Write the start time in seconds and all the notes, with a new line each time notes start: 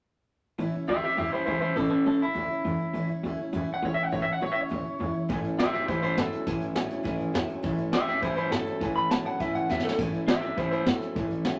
0.58 A1 A2 E3 A3 C#4 E4
0.74 C#2 A3 C#4 E4
0.87 D2 A2 E3 F#3 A3 C#4 E4 G4 E5
1.03 A3 C#4 E4 G4 E5, muted upright bass stroke
1.17 E2 A2 E3 F#3 A3 C#4 E4 G4 E5
1.31 A3 C#4 E4 C5
1.45 C#2 A2 E3 A3 C#4 E4 C5
1.60 A3 C#4 E4 C5, muted upright bass stroke
1.76 A1 A2 E3 A3 C#4 E4 A4
1.89 A3 C#4 E4 A4
2.04 A1 A2 E3 F#3 A3 C#4 E4 A4
2.20 C#2 A3 C#4 E4
2.33 D2 A2 E3 F#3 A3 C#4 E4
2.50 A3 C#4 E4, muted upright bass stroke
2.65 E2 A2 E3 A3 C#4 E4
2.79 A3 C#4 E4, muted upright bass stroke
2.94 A1 A2 E3 A3 C#4 E4
3.09 A3 C#4 E4
3.23 D2 A2 E3 F#3 A3 C#4 E4
3.39 A3 C#4 E4
3.53 E2 A2 E3 F#3 A3 C#4 E4
3.68 A3 C#4 E4, muted upright bass stroke
3.74 F#5
3.82 C#2 A2 E3 A3 C#4 E4 C#5
3.94 E4 E5, muted upright bass stroke
3.99 A3 C#4 F#5
4.12 A1 A2 E3 A3 C#4 E4 C#5
4.22 E5
4.27 A3 C#4 E4, muted upright bass stroke
4.33 F#5
4.39 A1 A2 E3 F#3 A3 C#4 E4 C#5
4.52 E4 E5
4.56 C#2 A3 C#4
4.61 C#5
4.69 D2 A2 E3 F#3 A3 C#4 E4
4.84 A3 C#4 E4, muted upright bass stroke
4.99 E2 A2 E3 A3 C#4 E4
5.14 A3 C#4 E4, muted upright bass stroke
5.29 A1 A2 E3 A3 C#4 E4, kick, closed hi-hat
5.44 A3 C#4 E4, muted upright bass stroke, closed hi-hat
5.59 E2 A2 E3 F#3 A3 C#4 E4 G4 E5, snare, closed hi-hat
5.73 F#2 A3 C#4 E4 G4 E5, closed hi-hat
5.88 A2 E3 A3 C#4 E4 C5, kick, closed hi-hat
6.02 A2 A3 C#4 E4 C5, closed hi-hat
6.17 A2 E3 F#3 A3 C#4 E4 A4, snare, closed hi-hat
6.32 A3 C#4 E4, muted upright bass stroke, closed hi-hat
6.47 A1 A2 E3 A3 C#4 E4, kick, closed hi-hat
6.61 A3 C#4 E4, muted upright bass stroke, closed hi-hat
6.75 A1 A2 E3 F#3 A3 C#4 E4, snare, closed hi-hat
6.89 C#2 A3 C#4 E4, closed hi-hat
7.03 A2 E3 A3 C#4 E4, kick, closed hi-hat
7.18 C#2 A3 C#4 E4, closed hi-hat
7.32 E2 A2 E3 F#3 A3 C#4 E4, snare, closed hi-hat
7.48 A3 C#4 E4, closed hi-hat
7.63 A1 A2 E3 A3 C#4 E4, kick, closed hi-hat
7.78 A3 C#4 E4, muted upright bass stroke, closed hi-hat
7.92 E2 A2 E3 F#3 A3 C#4 E4 G4 E5, snare, closed hi-hat
8.08 F#2 A3 C#4 E4 G4 E5, closed hi-hat
8.22 A2 E3 A3 C#4 E4 C5, kick, closed hi-hat
8.36 A2 C#4 E4 C5, closed hi-hat
8.41 A3
8.51 A2 E3 F#3 A3 C#4 E4 A4, snare, closed hi-hat
8.67 A3 C#4 E4, muted upright bass stroke, closed hi-hat
8.81 A1 A2 E3 A3 C#4 E4, kick, closed hi-hat
8.94 A3 C#4 E4 B5, muted upright bass stroke, closed hi-hat
9.09 A1 A2 E3 F#3 A3 C#4 E4 A5, snare, closed hi-hat
9.25 C#2 C#4 E4 F#5, closed hi-hat
9.29 A3
9.40 A2 E3 A3 C#4 E4 E5, kick, closed hi-hat
9.54 C#2 A3 C#4 E4 F#5, closed hi-hat
9.69 E2 A2 E3 F#3 A3 C#4 E4 E5, kick, snare
9.80 snare
9.85 A3 C#4 E4 A4
9.89 snare
9.98 A1 A2 E3 A3 C#4 E4, kick, closed hi-hat, splash
10.13 A3 C#4 E4, muted upright bass stroke, closed hi-hat
10.27 E2 A2 E3 F#3 A3 C#4 E4 G4 E5, snare, closed hi-hat
10.42 F#2 C#4 E4 G4 E5, closed hi-hat
10.46 A3
10.57 A2 E3 A3 C#4 E4 C5, kick, closed hi-hat
10.71 A2 A3 C#4 E4 C5, closed hi-hat
10.86 A2 E3 F#3 A3 C#4 E4 A4, snare, closed hi-hat
11.00 A3 C#4 E4, muted upright bass stroke, snare, closed hi-hat
11.16 A1 A2 E3 A3 C#4 E4, kick, closed hi-hat
11.30 A3 C#4 E4, muted upright bass stroke, closed hi-hat
11.45 A1 A2 E3 F#3 A3 C#4 E4, snare, closed hi-hat